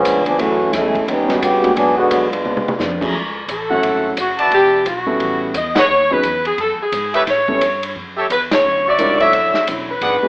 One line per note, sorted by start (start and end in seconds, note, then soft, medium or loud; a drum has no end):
0.00 0.27 C#3 medium
0.00 0.24 F3 medium
0.00 0.24 G#3 medium
0.00 0.24 B3 medium
0.00 0.24 C#4 loud
0.04 0.38 D2 medium
0.04 0.27 F3 medium
0.04 0.27 B3 medium
0.04 0.28 D4 medium
0.04 kick soft
0.04 hi-hat pedal medium
0.04 ride medium
0.26 0.38 F3 medium
0.26 0.38 B3 medium
0.26 0.38 D4 medium
0.26 0.38 G#4 medium
0.26 ride soft
0.38 0.72 F#2 medium
0.38 0.74 E3 medium
0.38 0.58 F#3 medium
0.38 0.61 F#3 medium
0.38 0.58 A3 soft
0.38 0.73 A3 loud
0.38 0.62 A3 medium
0.38 0.58 C#4 medium
0.38 0.73 C#4 medium
0.38 0.58 E4 soft
0.38 0.62 E4 medium
0.38 0.73 F#4 loud
0.38 0.58 G#4 medium
0.38 0.63 G#4 soft
0.38 kick soft
0.38 ride medium
0.73 1.06 E2 medium
0.73 0.96 F#3 medium
0.73 1.08 G#3 medium
0.73 0.96 A3 medium
0.73 1.08 A3 medium
0.73 1.07 C#4 medium
0.73 1.08 E4 medium
0.73 0.97 E4 medium
0.73 0.97 G#4 medium
0.73 kick soft
0.73 snare soft
0.73 hi-hat pedal soft
0.73 ride medium
0.95 kick medium
0.95 ride soft
1.07 1.41 D#2 medium
1.07 1.30 D#3 medium
1.07 1.40 G3 medium
1.07 1.30 B3 medium
1.07 1.40 B3 medium
1.07 1.40 C#4 medium
1.07 1.31 C#4 medium
1.07 1.40 D#4 loud
1.07 1.31 G4 medium
1.07 kick soft
1.07 ride medium
1.28 1.40 G3 medium
1.28 1.40 B3 medium
1.28 1.40 C#4 medium
1.28 1.40 D#4 medium
1.28 1.41 F#4 medium
1.28 snare soft
1.28 ride soft
1.41 1.75 G2 loud
1.41 1.76 C#3 loud
1.41 1.65 D#3 medium
1.41 1.75 B3 medium
1.41 1.65 B3 medium
1.41 1.65 C#4 medium
1.41 1.76 F#4 medium
1.41 1.76 G4 loud
1.41 1.66 G4 medium
1.41 kick soft
1.41 hi-hat pedal medium
1.41 ride medium
1.63 1.75 G#3 medium
1.63 1.75 A#3 medium
1.63 1.75 B3 medium
1.63 1.75 D4 medium
1.63 1.75 F#4 medium
1.63 ride soft
1.76 1.99 G#2 medium
1.76 2.09 G#2 medium
1.76 1.96 F#3 medium
1.76 1.99 F#3 soft
1.76 1.96 B3 medium
1.76 2.00 B3 medium
1.76 1.96 D4 medium
1.76 2.00 D4 medium
1.76 1.96 G#4 loud
1.76 kick soft
1.76 ride medium
1.97 2.29 D3 medium
1.97 2.29 G#3 medium
1.97 2.29 B3 medium
1.97 2.30 F#4 loud
2.10 2.44 F#2 medium
2.10 2.33 G#2 medium
2.10 2.34 F#3 medium
2.10 2.34 B3 medium
2.10 2.35 D4 medium
2.10 kick soft
2.10 hi-hat pedal soft
2.10 ride medium
2.30 2.96 G#3 medium
2.30 2.96 B3 medium
2.30 2.96 D4 medium
2.30 2.96 F4 medium
2.30 ride soft
2.44 2.65 C#2 medium
2.44 2.67 C#3 medium
2.44 2.68 F3 medium
2.44 2.68 B3 medium
2.44 2.69 D4 medium
2.44 mid tom soft
2.57 mid tom medium
2.66 muted upright bass stroke soft
2.66 mid tom medium
2.79 3.12 F2 medium
2.79 3.02 C#3 medium
2.79 3.02 F3 medium
2.79 3.02 B3 medium
2.79 3.03 D4 medium
2.79 snare medium
2.79 hi-hat pedal medium
3.01 3.12 F#3 medium
3.01 3.13 A3 medium
3.01 3.13 C#4 medium
3.01 3.13 E4 medium
3.01 3.13 G#4 medium
3.01 kick medium
3.01 crash medium
3.14 3.47 C#2 medium
3.14 kick soft
3.48 3.81 A1 medium
3.48 4.14 A4 medium
3.48 kick soft
3.48 hi-hat pedal soft
3.48 ride medium
3.69 4.15 F#3 medium
3.69 4.14 A3 medium
3.69 4.15 C#4 medium
3.69 4.14 E4 medium
3.69 4.15 A4 medium
3.69 4.14 C#5 medium
3.69 4.14 E5 medium
3.69 4.14 F#5 medium
3.83 4.16 G#1 medium
3.83 kick soft
3.83 ride medium
4.17 4.50 F#1 medium
4.17 4.51 F#4 medium
4.17 kick soft
4.17 hi-hat pedal medium
4.17 ride medium
4.38 4.83 B4 medium
4.38 4.83 D5 medium
4.38 4.83 E5 medium
4.38 4.83 A5 medium
4.38 ride soft
4.51 4.84 E1 medium
4.51 4.85 G4 loud
4.51 kick soft
4.51 ride medium
4.85 5.19 B1 medium
4.85 5.51 F#4 medium
4.85 kick soft
4.85 hi-hat pedal medium
4.85 ride medium
5.06 5.51 G3 medium
5.06 5.52 B3 medium
5.06 5.51 C#4 medium
5.06 5.52 E4 medium
5.06 5.51 A4 medium
5.19 5.53 A1 medium
5.19 kick soft
5.19 ride medium
5.54 5.88 E2 medium
5.54 5.77 D#5 loud
5.54 kick soft
5.54 hi-hat pedal medium
5.54 ride medium
5.75 5.84 G#4 medium
5.75 5.84 B4 medium
5.75 5.84 D#5 medium
5.75 5.84 F#5 loud
5.75 snare medium
5.75 ride medium
5.79 6.10 C#5 loud
5.88 6.22 D#2 medium
6.10 6.22 F#3 medium
6.10 6.22 B3 medium
6.10 6.22 C#4 medium
6.10 6.22 D#4 medium
6.10 6.22 G#4 medium
6.10 6.46 B4 loud
6.23 6.56 E2 medium
6.23 kick soft
6.23 hi-hat pedal medium
6.23 ride medium
6.45 6.58 G#4 medium
6.45 ride soft
6.58 6.77 F#2 medium
6.58 6.79 A4 medium
6.58 kick soft
6.58 ride medium
6.79 7.15 G#4 medium
6.79 muted upright bass stroke soft
6.92 7.25 G#2 medium
6.92 kick soft
6.92 hi-hat pedal medium
6.92 ride medium
7.14 7.22 G4 medium
7.14 7.22 A4 medium
7.14 7.21 B4 medium
7.14 7.23 C#5 medium
7.14 7.22 E5 loud
7.14 ride soft
7.26 7.60 A2 medium
7.26 7.92 C#5 medium
7.26 kick soft
7.26 snare soft
7.26 ride medium
7.48 7.60 G3 medium
7.48 7.60 B3 medium
7.48 7.60 C#4 medium
7.48 7.60 E4 medium
7.48 7.60 A4 medium
7.48 kick medium
7.61 7.94 G2 medium
7.61 kick soft
7.61 hi-hat pedal soft
7.61 ride medium
7.83 ride medium
7.95 8.29 F#2 medium
7.95 kick soft
8.16 8.25 G4 medium
8.16 8.25 A4 medium
8.16 8.25 C#5 medium
8.16 8.25 E5 medium
8.30 8.63 E2 medium
8.30 8.41 B4 medium
8.30 kick soft
8.30 hi-hat pedal soft
8.30 ride medium
8.51 8.84 C#5 loud
8.51 snare medium
8.51 ride medium
8.63 8.97 D2 medium
8.63 8.86 D3 soft
8.63 8.87 F#3 soft
8.63 8.87 C#4 soft
8.63 8.88 E4 medium
8.85 9.18 F#4 medium
8.85 9.17 D5 medium
8.85 9.19 D5 loud
8.85 9.17 E5 medium
8.85 9.17 C#6 medium
8.98 9.32 C#2 medium
8.98 9.21 D3 medium
8.98 9.22 F#3 medium
8.98 9.18 G3 medium
8.98 9.22 C#4 medium
8.98 9.18 D4 medium
8.98 9.18 D#4 medium
8.98 9.22 E4 medium
8.98 9.18 F4 medium
8.98 9.18 A#4 medium
8.98 kick soft
8.98 hi-hat pedal medium
8.98 ride medium
9.19 9.50 F#3 medium
9.19 9.50 D4 medium
9.19 9.50 E4 medium
9.19 9.64 F#4 medium
9.19 9.50 A4 medium
9.19 9.64 C#5 medium
9.19 9.50 C#5 medium
9.19 9.64 D5 medium
9.19 9.64 E5 medium
9.19 9.68 E5 loud
9.19 ride soft
9.32 9.53 F#1 medium
9.32 9.55 D3 soft
9.32 9.56 F#3 soft
9.32 9.56 C#4 medium
9.32 9.57 E4 medium
9.32 kick soft
9.32 ride medium
9.54 muted upright bass stroke soft
9.54 snare soft
9.67 10.00 E1 medium
9.67 9.90 D3 medium
9.67 9.90 F#3 medium
9.67 9.90 C#4 medium
9.67 9.91 E4 medium
9.67 kick soft
9.67 hi-hat pedal soft
9.67 ride medium
9.91 10.28 B4 loud
10.01 10.21 G#1 medium
10.01 10.24 G#2 soft
10.01 10.25 F#3 soft
10.01 10.25 B3 soft
10.01 10.25 D4 medium
10.01 10.16 G#4 medium
10.01 10.16 B4 medium
10.01 10.16 D5 medium
10.01 10.16 F#5 medium
10.01 kick soft
10.01 ride medium
10.22 10.28 G#3 medium
10.22 10.28 B3 medium
10.22 10.28 D4 medium
10.22 10.28 F#4 medium
10.22 10.28 G#4 medium
10.22 muted upright bass stroke soft